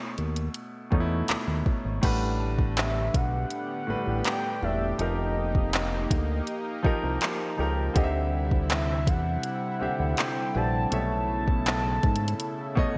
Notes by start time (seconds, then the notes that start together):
Already playing: B2 A3 C#4 E4
0.18 D#2, closed hi-hat
0.36 closed hi-hat
0.54 closed hi-hat
0.90 E2 B2 A3 C#4 D#4, kick
1.00 E4
1.28 D#2, clap, closed hi-hat
1.48 D#2
1.66 kick
1.85 G#1
2.01 A1 A2 D3 G3 B3 D4 G4 B4 F#5, kick, closed hi-hat, crash
2.40 A5
2.58 kick
2.77 E5, clap, closed hi-hat
3.14 B1 F#5, kick, closed hi-hat
3.50 closed hi-hat
3.87 A1 A2 G3 D4 B4
4.07 A1
4.24 G5, clap, closed hi-hat
4.61 E1 A2 G3 D4 D5 E5 F#5
4.98 F1 F3 A#3 D#4 G4 A#4 D#5, closed hi-hat
5.55 kick
5.73 clap, closed hi-hat
6.11 D2, kick, closed hi-hat
6.47 closed hi-hat
6.83 C2 F3 D#4 G4 A#4, kick
7.03 C2
7.21 clap, closed hi-hat
7.57 C#2 F3 D#4 G4 A#4
7.94 D2 C3 D3 G3 C4 E4 G4 D#5, kick, closed hi-hat
8.04 E5
8.51 kick
8.70 E5, clap, closed hi-hat
9.07 E2 F#5, kick, closed hi-hat
9.43 closed hi-hat
9.79 D2 D3 C4 G4 E5
10.00 D2
10.17 G5, clap, closed hi-hat
10.53 A#1 D3 C4 G4 B4 D5 A5
10.90 B1 B2 C#3 A3 A4 C#5 E5 A5, closed hi-hat
11.48 kick
11.66 clap, closed hi-hat
12.03 G#2, kick, closed hi-hat
12.16 closed hi-hat
12.28 closed hi-hat
12.40 closed hi-hat
12.75 F#2 B2 A3 C#5 D#5, kick